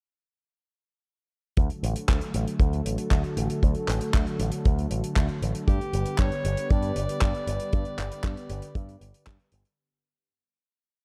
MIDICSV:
0, 0, Header, 1, 5, 480
1, 0, Start_track
1, 0, Key_signature, 2, "major"
1, 0, Tempo, 512821
1, 1473, Time_signature, 4, 2, 24, 8
1, 10338, End_track
2, 0, Start_track
2, 0, Title_t, "Alto saxophone"
2, 0, Program_c, 0, 65
2, 5313, Note_on_c, 0, 67, 101
2, 5791, Note_on_c, 0, 73, 109
2, 5805, Note_off_c, 0, 67, 0
2, 6271, Note_on_c, 0, 74, 112
2, 6285, Note_off_c, 0, 73, 0
2, 8672, Note_off_c, 0, 74, 0
2, 10338, End_track
3, 0, Start_track
3, 0, Title_t, "Analog synth pad"
3, 0, Program_c, 1, 89
3, 1472, Note_on_c, 1, 66, 70
3, 1473, Note_on_c, 1, 50, 77
3, 1473, Note_on_c, 1, 54, 74
3, 1473, Note_on_c, 1, 57, 71
3, 1474, Note_on_c, 1, 69, 88
3, 5275, Note_off_c, 1, 57, 0
3, 5275, Note_off_c, 1, 66, 0
3, 5276, Note_off_c, 1, 54, 0
3, 5276, Note_off_c, 1, 69, 0
3, 5316, Note_on_c, 1, 55, 71
3, 5316, Note_on_c, 1, 67, 72
3, 5316, Note_on_c, 1, 71, 89
3, 5317, Note_on_c, 1, 59, 74
3, 9116, Note_off_c, 1, 50, 0
3, 9117, Note_off_c, 1, 55, 0
3, 9117, Note_off_c, 1, 67, 0
3, 9117, Note_off_c, 1, 71, 0
3, 9118, Note_off_c, 1, 59, 0
3, 10338, End_track
4, 0, Start_track
4, 0, Title_t, "Picked electric bass"
4, 0, Program_c, 2, 34
4, 1472, Note_on_c, 2, 38, 91
4, 1566, Note_off_c, 2, 38, 0
4, 1712, Note_on_c, 2, 33, 99
4, 1806, Note_off_c, 2, 33, 0
4, 1952, Note_on_c, 2, 38, 77
4, 2046, Note_off_c, 2, 38, 0
4, 2192, Note_on_c, 2, 33, 81
4, 2287, Note_off_c, 2, 33, 0
4, 2429, Note_on_c, 2, 38, 98
4, 2619, Note_off_c, 2, 38, 0
4, 2674, Note_on_c, 2, 33, 76
4, 2767, Note_off_c, 2, 33, 0
4, 2910, Note_on_c, 2, 38, 89
4, 3006, Note_off_c, 2, 38, 0
4, 3152, Note_on_c, 2, 33, 83
4, 3247, Note_off_c, 2, 33, 0
4, 3395, Note_on_c, 2, 38, 92
4, 3488, Note_off_c, 2, 38, 0
4, 3633, Note_on_c, 2, 33, 98
4, 3727, Note_off_c, 2, 33, 0
4, 3874, Note_on_c, 2, 38, 76
4, 3968, Note_off_c, 2, 38, 0
4, 4114, Note_on_c, 2, 33, 85
4, 4207, Note_off_c, 2, 33, 0
4, 4357, Note_on_c, 2, 38, 99
4, 4543, Note_off_c, 2, 38, 0
4, 4593, Note_on_c, 2, 33, 76
4, 4687, Note_off_c, 2, 33, 0
4, 4833, Note_on_c, 2, 38, 88
4, 4927, Note_off_c, 2, 38, 0
4, 5074, Note_on_c, 2, 33, 83
4, 5167, Note_off_c, 2, 33, 0
4, 5313, Note_on_c, 2, 43, 95
4, 5407, Note_off_c, 2, 43, 0
4, 5552, Note_on_c, 2, 31, 98
4, 5646, Note_off_c, 2, 31, 0
4, 5791, Note_on_c, 2, 43, 80
4, 5886, Note_off_c, 2, 43, 0
4, 6033, Note_on_c, 2, 31, 89
4, 6127, Note_off_c, 2, 31, 0
4, 6276, Note_on_c, 2, 43, 101
4, 6462, Note_off_c, 2, 43, 0
4, 6513, Note_on_c, 2, 31, 78
4, 6607, Note_off_c, 2, 31, 0
4, 6755, Note_on_c, 2, 43, 89
4, 6848, Note_off_c, 2, 43, 0
4, 6992, Note_on_c, 2, 31, 87
4, 7086, Note_off_c, 2, 31, 0
4, 7236, Note_on_c, 2, 43, 94
4, 7328, Note_off_c, 2, 43, 0
4, 7473, Note_on_c, 2, 31, 96
4, 7567, Note_off_c, 2, 31, 0
4, 7710, Note_on_c, 2, 43, 82
4, 7805, Note_off_c, 2, 43, 0
4, 7953, Note_on_c, 2, 31, 86
4, 8047, Note_off_c, 2, 31, 0
4, 8192, Note_on_c, 2, 43, 100
4, 8380, Note_off_c, 2, 43, 0
4, 8432, Note_on_c, 2, 31, 79
4, 8527, Note_off_c, 2, 31, 0
4, 8676, Note_on_c, 2, 43, 84
4, 8768, Note_off_c, 2, 43, 0
4, 8912, Note_on_c, 2, 31, 97
4, 9007, Note_off_c, 2, 31, 0
4, 10338, End_track
5, 0, Start_track
5, 0, Title_t, "Drums"
5, 1468, Note_on_c, 9, 42, 62
5, 1473, Note_on_c, 9, 36, 106
5, 1562, Note_off_c, 9, 42, 0
5, 1566, Note_off_c, 9, 36, 0
5, 1591, Note_on_c, 9, 42, 45
5, 1685, Note_off_c, 9, 42, 0
5, 1719, Note_on_c, 9, 42, 104
5, 1813, Note_off_c, 9, 42, 0
5, 1832, Note_on_c, 9, 42, 61
5, 1926, Note_off_c, 9, 42, 0
5, 1952, Note_on_c, 9, 36, 103
5, 1956, Note_on_c, 9, 39, 104
5, 1961, Note_on_c, 9, 42, 64
5, 2045, Note_off_c, 9, 36, 0
5, 2049, Note_off_c, 9, 39, 0
5, 2055, Note_off_c, 9, 42, 0
5, 2071, Note_on_c, 9, 42, 47
5, 2165, Note_off_c, 9, 42, 0
5, 2192, Note_on_c, 9, 42, 95
5, 2285, Note_off_c, 9, 42, 0
5, 2317, Note_on_c, 9, 42, 59
5, 2411, Note_off_c, 9, 42, 0
5, 2429, Note_on_c, 9, 36, 115
5, 2432, Note_on_c, 9, 42, 66
5, 2523, Note_off_c, 9, 36, 0
5, 2526, Note_off_c, 9, 42, 0
5, 2556, Note_on_c, 9, 42, 43
5, 2650, Note_off_c, 9, 42, 0
5, 2676, Note_on_c, 9, 42, 103
5, 2770, Note_off_c, 9, 42, 0
5, 2790, Note_on_c, 9, 42, 68
5, 2883, Note_off_c, 9, 42, 0
5, 2911, Note_on_c, 9, 36, 98
5, 2915, Note_on_c, 9, 39, 109
5, 2916, Note_on_c, 9, 42, 65
5, 3004, Note_off_c, 9, 36, 0
5, 3008, Note_off_c, 9, 39, 0
5, 3010, Note_off_c, 9, 42, 0
5, 3033, Note_on_c, 9, 42, 41
5, 3127, Note_off_c, 9, 42, 0
5, 3155, Note_on_c, 9, 42, 105
5, 3248, Note_off_c, 9, 42, 0
5, 3275, Note_on_c, 9, 42, 63
5, 3369, Note_off_c, 9, 42, 0
5, 3396, Note_on_c, 9, 36, 109
5, 3400, Note_on_c, 9, 42, 61
5, 3489, Note_off_c, 9, 36, 0
5, 3494, Note_off_c, 9, 42, 0
5, 3507, Note_on_c, 9, 42, 46
5, 3600, Note_off_c, 9, 42, 0
5, 3636, Note_on_c, 9, 39, 57
5, 3642, Note_on_c, 9, 42, 103
5, 3729, Note_off_c, 9, 39, 0
5, 3735, Note_off_c, 9, 42, 0
5, 3752, Note_on_c, 9, 42, 63
5, 3846, Note_off_c, 9, 42, 0
5, 3874, Note_on_c, 9, 42, 59
5, 3875, Note_on_c, 9, 36, 111
5, 3877, Note_on_c, 9, 39, 113
5, 3968, Note_off_c, 9, 36, 0
5, 3968, Note_off_c, 9, 42, 0
5, 3971, Note_off_c, 9, 39, 0
5, 3995, Note_on_c, 9, 42, 44
5, 4088, Note_off_c, 9, 42, 0
5, 4114, Note_on_c, 9, 42, 97
5, 4208, Note_off_c, 9, 42, 0
5, 4228, Note_on_c, 9, 42, 60
5, 4321, Note_off_c, 9, 42, 0
5, 4355, Note_on_c, 9, 42, 69
5, 4357, Note_on_c, 9, 36, 125
5, 4449, Note_off_c, 9, 42, 0
5, 4451, Note_off_c, 9, 36, 0
5, 4480, Note_on_c, 9, 42, 44
5, 4574, Note_off_c, 9, 42, 0
5, 4594, Note_on_c, 9, 42, 88
5, 4687, Note_off_c, 9, 42, 0
5, 4715, Note_on_c, 9, 42, 64
5, 4809, Note_off_c, 9, 42, 0
5, 4833, Note_on_c, 9, 36, 112
5, 4834, Note_on_c, 9, 39, 125
5, 4839, Note_on_c, 9, 42, 67
5, 4927, Note_off_c, 9, 36, 0
5, 4927, Note_off_c, 9, 39, 0
5, 4932, Note_off_c, 9, 42, 0
5, 4948, Note_on_c, 9, 42, 41
5, 5041, Note_off_c, 9, 42, 0
5, 5078, Note_on_c, 9, 42, 102
5, 5172, Note_off_c, 9, 42, 0
5, 5194, Note_on_c, 9, 42, 67
5, 5287, Note_off_c, 9, 42, 0
5, 5314, Note_on_c, 9, 36, 110
5, 5322, Note_on_c, 9, 42, 69
5, 5407, Note_off_c, 9, 36, 0
5, 5415, Note_off_c, 9, 42, 0
5, 5441, Note_on_c, 9, 42, 48
5, 5534, Note_off_c, 9, 42, 0
5, 5555, Note_on_c, 9, 42, 103
5, 5648, Note_off_c, 9, 42, 0
5, 5668, Note_on_c, 9, 42, 63
5, 5762, Note_off_c, 9, 42, 0
5, 5788, Note_on_c, 9, 39, 117
5, 5789, Note_on_c, 9, 42, 59
5, 5791, Note_on_c, 9, 36, 110
5, 5882, Note_off_c, 9, 39, 0
5, 5883, Note_off_c, 9, 42, 0
5, 5884, Note_off_c, 9, 36, 0
5, 5913, Note_on_c, 9, 42, 46
5, 6007, Note_off_c, 9, 42, 0
5, 6035, Note_on_c, 9, 42, 94
5, 6128, Note_off_c, 9, 42, 0
5, 6153, Note_on_c, 9, 42, 69
5, 6246, Note_off_c, 9, 42, 0
5, 6274, Note_on_c, 9, 42, 57
5, 6276, Note_on_c, 9, 36, 123
5, 6368, Note_off_c, 9, 42, 0
5, 6370, Note_off_c, 9, 36, 0
5, 6388, Note_on_c, 9, 42, 47
5, 6482, Note_off_c, 9, 42, 0
5, 6514, Note_on_c, 9, 42, 94
5, 6607, Note_off_c, 9, 42, 0
5, 6638, Note_on_c, 9, 42, 63
5, 6732, Note_off_c, 9, 42, 0
5, 6752, Note_on_c, 9, 39, 111
5, 6755, Note_on_c, 9, 36, 113
5, 6758, Note_on_c, 9, 42, 63
5, 6845, Note_off_c, 9, 39, 0
5, 6849, Note_off_c, 9, 36, 0
5, 6851, Note_off_c, 9, 42, 0
5, 6876, Note_on_c, 9, 42, 45
5, 6970, Note_off_c, 9, 42, 0
5, 6996, Note_on_c, 9, 42, 104
5, 7090, Note_off_c, 9, 42, 0
5, 7111, Note_on_c, 9, 42, 65
5, 7204, Note_off_c, 9, 42, 0
5, 7232, Note_on_c, 9, 42, 63
5, 7236, Note_on_c, 9, 36, 118
5, 7325, Note_off_c, 9, 42, 0
5, 7330, Note_off_c, 9, 36, 0
5, 7348, Note_on_c, 9, 42, 42
5, 7442, Note_off_c, 9, 42, 0
5, 7477, Note_on_c, 9, 39, 59
5, 7481, Note_on_c, 9, 42, 86
5, 7571, Note_off_c, 9, 39, 0
5, 7575, Note_off_c, 9, 42, 0
5, 7598, Note_on_c, 9, 42, 58
5, 7691, Note_off_c, 9, 42, 0
5, 7708, Note_on_c, 9, 42, 57
5, 7710, Note_on_c, 9, 36, 96
5, 7713, Note_on_c, 9, 39, 112
5, 7802, Note_off_c, 9, 42, 0
5, 7803, Note_off_c, 9, 36, 0
5, 7806, Note_off_c, 9, 39, 0
5, 7837, Note_on_c, 9, 42, 47
5, 7931, Note_off_c, 9, 42, 0
5, 7953, Note_on_c, 9, 42, 93
5, 8046, Note_off_c, 9, 42, 0
5, 8071, Note_on_c, 9, 42, 63
5, 8164, Note_off_c, 9, 42, 0
5, 8193, Note_on_c, 9, 36, 122
5, 8195, Note_on_c, 9, 42, 64
5, 8286, Note_off_c, 9, 36, 0
5, 8289, Note_off_c, 9, 42, 0
5, 8320, Note_on_c, 9, 42, 46
5, 8414, Note_off_c, 9, 42, 0
5, 8437, Note_on_c, 9, 42, 88
5, 8531, Note_off_c, 9, 42, 0
5, 8559, Note_on_c, 9, 42, 60
5, 8652, Note_off_c, 9, 42, 0
5, 8674, Note_on_c, 9, 39, 120
5, 8676, Note_on_c, 9, 36, 102
5, 8677, Note_on_c, 9, 42, 60
5, 8768, Note_off_c, 9, 39, 0
5, 8769, Note_off_c, 9, 36, 0
5, 8771, Note_off_c, 9, 42, 0
5, 8795, Note_on_c, 9, 42, 41
5, 8888, Note_off_c, 9, 42, 0
5, 8909, Note_on_c, 9, 42, 104
5, 9003, Note_off_c, 9, 42, 0
5, 9035, Note_on_c, 9, 42, 65
5, 9128, Note_off_c, 9, 42, 0
5, 10338, End_track
0, 0, End_of_file